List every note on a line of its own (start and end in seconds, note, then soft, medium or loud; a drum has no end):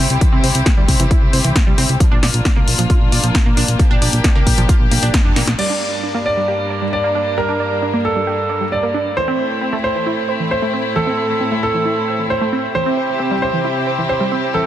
0.00 1.97 C3 medium
0.00 1.97 C4 medium
0.00 1.97 E4 medium
0.00 1.97 G4 medium
0.10 0.17 C2 medium
0.10 closed hi-hat medium
0.21 0.26 E3 medium
0.21 kick loud
0.21 closed hi-hat medium
0.33 0.40 C2 medium
0.33 0.37 C4 loud
0.44 0.51 C2 loud
0.44 0.46 C5 medium
0.44 open hi-hat loud
0.55 0.62 C2 medium
0.55 closed hi-hat medium
0.66 0.71 C4 medium
0.66 kick loud
0.66 snare loud
0.66 closed hi-hat medium
0.77 0.85 D2 medium
0.77 0.80 G3 loud
0.88 0.96 C2 loud
0.88 kick medium
0.88 open hi-hat medium
1.00 1.07 C2 medium
1.00 1.04 E3 medium
1.00 closed hi-hat medium
1.11 1.15 E4 medium
1.11 kick loud
1.11 closed hi-hat medium
1.22 1.29 C2 medium
1.33 1.40 C2 loud
1.33 1.36 C5 medium
1.33 open hi-hat loud
1.44 1.52 C2 medium
1.44 1.49 E3 medium
1.44 closed hi-hat medium
1.56 kick loud
1.56 snare loud
1.56 closed hi-hat medium
1.67 1.74 C2 medium
1.67 1.69 G3 loud
1.78 1.85 C2 loud
1.78 1.81 C4 loud
1.78 open hi-hat medium
1.89 1.96 C2 medium
1.89 closed hi-hat medium
2.00 2.05 F3 medium
2.00 5.55 A#3 medium
2.00 5.55 D4 medium
2.00 3.78 F4 medium
2.00 kick loud
2.00 closed hi-hat medium
2.12 2.19 A#1 medium
2.12 2.16 D4 loud
2.23 2.30 A#1 loud
2.23 2.25 D5 medium
2.23 snare medium
2.23 open hi-hat loud
2.34 2.41 A#1 medium
2.34 closed hi-hat medium
2.45 2.50 D4 medium
2.45 kick loud
2.45 snare loud
2.45 closed hi-hat medium
2.56 2.64 C2 medium
2.56 2.59 A#3 loud
2.68 2.75 A#1 loud
2.68 open hi-hat medium
2.79 2.86 A#1 medium
2.79 2.83 F3 medium
2.79 closed hi-hat medium
2.90 2.94 F4 medium
2.90 kick loud
2.90 closed hi-hat medium
3.01 3.08 A#1 medium
3.12 3.20 A#1 loud
3.12 3.15 D5 medium
3.12 open hi-hat loud
3.23 3.31 A#1 medium
3.23 3.28 F3 medium
3.23 closed hi-hat medium
3.35 kick loud
3.35 snare loud
3.35 closed hi-hat medium
3.46 3.53 A#1 medium
3.46 3.49 A#3 loud
3.57 3.64 A#1 loud
3.57 3.60 D4 loud
3.57 open hi-hat medium
3.68 3.76 A#1 medium
3.68 closed hi-hat medium
3.79 3.84 F3 medium
3.79 5.57 G4 medium
3.79 kick loud
3.79 closed hi-hat medium
3.91 3.98 A#1 medium
3.91 3.95 D4 loud
4.02 4.09 A#1 loud
4.02 4.05 D5 medium
4.02 open hi-hat loud
4.13 4.20 A#1 medium
4.13 closed hi-hat medium
4.24 4.29 D4 medium
4.24 kick loud
4.24 snare loud
4.24 closed hi-hat medium
4.35 4.43 C2 medium
4.35 4.38 A#3 loud
4.47 4.54 A#1 loud
4.47 kick medium
4.47 open hi-hat medium
4.58 4.65 A#1 medium
4.58 4.62 F3 medium
4.58 closed hi-hat medium
4.69 4.74 F4 medium
4.69 kick loud
4.69 closed hi-hat medium
4.80 4.87 A#1 medium
4.91 4.99 A#1 loud
4.91 4.94 A#3 medium
4.91 open hi-hat loud
5.03 5.10 A#1 medium
5.03 5.07 D4 loud
5.03 closed hi-hat medium
5.14 kick loud
5.14 snare loud
5.14 closed hi-hat medium
5.25 5.32 F1 medium
5.25 5.29 D4 medium
5.36 5.43 A#1 loud
5.36 5.41 A#3 loud
5.36 snare medium
5.36 open hi-hat medium
5.47 5.55 A#1 medium
5.47 snare medium
5.47 closed hi-hat medium
5.59 9.13 G2 medium
5.59 5.63 G3 medium
5.59 9.13 G3 medium
5.59 9.13 A#3 medium
5.59 9.13 D4 medium
5.59 6.17 D5 medium
5.59 crash medium
5.70 5.74 D4 medium
5.81 5.84 D5 medium
6.03 6.08 D4 medium
6.15 6.17 A#3 loud
6.26 6.84 D5 medium
6.37 6.41 G3 medium
6.48 6.53 G4 medium
6.70 6.73 D5 medium
6.82 6.86 G3 medium
6.93 7.35 D5 medium
7.04 7.07 A#3 loud
7.15 7.18 D4 medium
7.38 7.42 G3 medium
7.38 7.96 A#4 medium
7.49 7.53 D4 loud
7.60 7.63 D5 medium
7.82 7.87 D4 medium
7.94 7.96 A#3 loud
8.05 8.63 A4 medium
8.16 8.20 G3 medium
8.27 8.32 G4 medium
8.50 8.52 D5 medium
8.61 8.65 G3 medium
8.72 9.15 D5 medium
8.83 8.86 A#3 loud
8.94 8.97 D4 medium
9.17 12.71 A2 medium
9.17 9.21 E3 medium
9.17 12.71 A3 medium
9.17 12.71 C4 medium
9.17 12.71 E4 medium
9.17 9.75 C5 medium
9.28 9.32 C4 loud
9.39 9.42 C5 medium
9.62 9.66 C4 medium
9.73 9.75 A3 loud
9.84 10.42 C5 medium
9.95 10.00 E3 medium
10.06 10.11 E4 medium
10.29 10.31 C5 medium
10.40 10.44 E3 medium
10.51 10.94 C5 medium
10.62 10.65 A3 loud
10.73 10.76 C4 loud
10.96 11.00 E3 medium
10.96 11.54 A4 medium
11.07 11.12 C4 loud
11.18 11.21 C5 medium
11.41 11.45 C4 medium
11.52 11.55 A3 loud
11.63 12.21 A4 medium
11.74 11.79 E3 medium
11.85 11.90 E4 medium
12.08 12.11 C5 medium
12.19 12.23 E3 medium
12.30 12.73 C5 medium
12.41 12.44 A3 loud
12.53 12.55 C4 loud
12.75 14.66 C3 medium
12.75 12.79 E3 medium
12.75 14.66 C4 medium
12.75 14.66 E4 medium
12.75 14.66 G4 medium
12.75 13.33 C5 medium
12.86 12.91 C4 loud
12.97 13.00 C5 medium
13.20 13.24 C4 medium
13.31 13.34 G3 loud
13.42 14.00 C5 medium
13.53 13.58 E3 medium
13.65 13.69 E4 medium
13.87 13.90 C5 medium
13.98 14.03 E3 medium
14.09 14.52 C5 medium
14.21 14.23 G3 loud
14.32 14.34 C4 loud
14.54 14.59 E3 medium
14.54 14.66 A4 medium